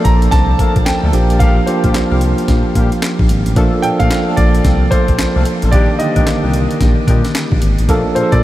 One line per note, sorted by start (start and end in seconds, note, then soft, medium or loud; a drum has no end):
0.00 1.13 F3 medium
0.00 1.13 A#3 medium
0.00 1.14 D4 medium
0.00 1.15 A4 loud
0.04 0.28 A#1 medium
0.04 0.33 A#5 medium
0.04 kick medium
0.04 closed hi-hat medium
0.22 closed hi-hat medium
0.31 0.55 C2 loud
0.31 0.87 A5 loud
0.31 kick loud
0.31 snare medium
0.31 closed hi-hat medium
0.59 0.76 A3 medium
0.59 0.75 A#3 medium
0.59 0.76 D4 medium
0.59 0.76 A4 medium
0.59 kick medium
0.59 closed hi-hat medium
0.76 0.85 A#1 loud
0.76 kick loud
0.76 closed hi-hat soft
0.85 0.93 D2 medium
0.85 1.41 G5 medium
0.85 snare loud
0.85 clap medium
0.85 closed hi-hat medium
1.03 1.12 D2 medium
1.03 1.13 A3 medium
1.03 1.13 A#3 medium
1.03 1.13 D4 medium
1.03 1.13 A4 medium
1.13 1.59 A#1 loud
1.13 1.60 F3 medium
1.13 1.60 A#3 medium
1.13 1.61 D4 medium
1.13 1.61 G4 medium
1.13 closed hi-hat medium
1.30 1.39 G3 medium
1.30 1.39 A#3 medium
1.30 1.39 F4 medium
1.30 1.39 G4 medium
1.30 closed hi-hat medium
1.39 1.57 G3 medium
1.39 1.56 A#3 medium
1.39 1.57 F4 medium
1.39 1.57 G4 loud
1.39 1.68 F5 medium
1.39 kick loud
1.39 closed hi-hat medium
1.66 2.59 F3 medium
1.66 2.59 A#3 medium
1.66 2.59 D4 medium
1.66 2.60 G4 medium
1.66 2.17 C5 medium
1.66 closed hi-hat medium
1.84 1.93 A#1 medium
1.84 1.94 G3 medium
1.84 1.94 A#3 medium
1.84 1.94 F4 medium
1.84 1.94 G4 medium
1.84 kick medium
1.84 closed hi-hat medium
1.94 2.01 C2 soft
1.94 snare loud
1.94 clap medium
1.94 closed hi-hat medium
2.11 2.34 C2 medium
2.11 2.21 G3 medium
2.11 2.21 A#3 medium
2.11 2.21 F4 medium
2.11 2.21 G4 medium
2.21 closed hi-hat medium
2.38 closed hi-hat soft
2.48 2.63 A#1 loud
2.48 kick medium
2.48 snare medium
2.48 closed hi-hat medium
2.75 2.90 A#2 medium
2.75 2.92 G3 medium
2.75 2.92 A#3 medium
2.75 2.92 F4 medium
2.75 2.92 G4 medium
2.75 kick medium
2.75 closed hi-hat medium
2.92 closed hi-hat soft
3.02 snare loud
3.02 clap loud
3.02 closed hi-hat medium
3.19 3.28 A#1 medium
3.19 kick medium
3.29 3.44 G#1 medium
3.29 closed hi-hat medium
3.46 3.55 A1 loud
3.46 closed hi-hat medium
3.56 3.71 A#1 loud
3.56 3.80 F3 medium
3.56 3.73 A3 loud
3.56 3.73 A#3 medium
3.56 3.80 A#3 medium
3.56 3.73 D4 medium
3.56 3.80 D4 medium
3.56 3.73 A4 loud
3.56 3.80 A4 loud
3.56 kick loud
3.56 closed hi-hat medium
3.82 3.91 A#2 soft
3.82 4.75 F3 medium
3.82 4.75 A#3 medium
3.82 4.76 D4 medium
3.82 4.76 A4 medium
3.82 3.87 G5 loud
3.82 closed hi-hat medium
3.99 4.09 A#2 medium
3.99 4.10 A3 medium
3.99 4.10 A#3 medium
3.99 4.10 D4 medium
3.99 4.10 A4 medium
3.99 4.38 F5 loud
3.99 kick medium
3.99 closed hi-hat medium
4.11 snare medium
4.11 clap medium
4.11 closed hi-hat medium
4.27 4.37 A3 medium
4.27 4.37 A#3 medium
4.27 4.37 D4 medium
4.27 4.37 A4 medium
4.37 4.60 A#1 medium
4.37 4.87 D5 medium
4.37 kick medium
4.37 closed hi-hat medium
4.55 closed hi-hat medium
4.65 4.87 C2 medium
4.65 kick loud
4.65 snare medium
4.65 closed hi-hat medium
4.91 5.08 A3 medium
4.91 5.08 A#3 medium
4.91 5.08 D4 medium
4.91 5.08 A4 medium
4.91 5.75 C5 medium
4.91 kick medium
4.91 closed hi-hat medium
5.08 5.17 A#1 loud
5.08 kick medium
5.08 closed hi-hat soft
5.19 5.26 C2 soft
5.19 snare loud
5.19 clap medium
5.19 closed hi-hat medium
5.35 5.44 C2 medium
5.35 5.45 A3 medium
5.35 5.45 A#3 medium
5.35 5.45 D4 medium
5.35 5.45 A4 medium
5.45 closed hi-hat medium
5.62 5.71 A1 loud
5.62 5.72 A3 medium
5.62 5.72 A#3 medium
5.62 5.71 D4 medium
5.62 5.72 A4 medium
5.62 closed hi-hat medium
5.71 5.87 A#1 loud
5.71 5.96 D#3 medium
5.71 5.89 G3 medium
5.71 5.96 A#3 medium
5.71 5.89 D4 medium
5.71 5.97 D4 medium
5.71 5.89 D#4 medium
5.71 5.89 G4 loud
5.71 5.97 G4 medium
5.71 6.00 D5 medium
5.71 kick loud
5.71 closed hi-hat medium
5.99 6.92 D3 medium
5.99 6.91 D#3 medium
5.99 6.92 A#3 medium
5.99 6.92 G4 medium
5.99 7.57 D#5 medium
5.99 closed hi-hat medium
6.16 6.25 A#1 medium
6.16 6.26 G3 medium
6.16 6.26 D4 medium
6.16 6.26 D#4 medium
6.16 6.26 G4 medium
6.16 kick medium
6.16 closed hi-hat medium
6.27 6.34 C2 soft
6.27 snare medium
6.27 clap medium
6.27 closed hi-hat medium
6.43 6.66 C2 medium
6.43 6.54 G3 medium
6.43 6.53 D4 medium
6.43 6.53 D#4 medium
6.43 6.54 G4 medium
6.54 closed hi-hat medium
6.71 closed hi-hat medium
6.81 6.95 A#1 loud
6.81 kick loud
6.81 snare medium
6.81 closed hi-hat medium
7.07 7.22 A#2 loud
7.07 7.24 G3 medium
7.07 7.24 D4 medium
7.07 7.24 D#4 medium
7.07 7.24 G4 medium
7.07 kick medium
7.07 closed hi-hat medium
7.25 snare medium
7.25 closed hi-hat soft
7.35 snare loud
7.35 clap loud
7.35 closed hi-hat medium
7.52 7.60 A#1 loud
7.52 kick medium
7.62 7.76 G#1 medium
7.62 closed hi-hat medium
7.79 7.88 A1 medium
7.79 closed hi-hat medium
7.89 8.03 A#1 loud
7.89 8.12 F3 medium
7.89 8.05 A3 medium
7.89 8.05 A#3 medium
7.89 8.13 A#3 medium
7.89 8.05 D4 medium
7.89 8.13 D4 medium
7.89 8.05 A4 loud
7.89 8.13 A4 loud
7.89 kick loud
7.89 closed hi-hat medium
8.15 8.23 A#2 soft
8.15 8.43 F3 medium
8.15 8.43 A#3 medium
8.15 8.43 D4 medium
8.15 8.24 G#4 medium
8.15 8.33 C5 medium
8.15 closed hi-hat medium
8.23 8.43 A4 medium
8.32 8.41 A#2 medium
8.32 8.43 A3 medium
8.32 8.43 A#3 medium
8.32 8.43 D4 medium
8.32 8.43 A4 medium
8.32 8.43 D5 medium
8.32 kick medium
8.32 closed hi-hat soft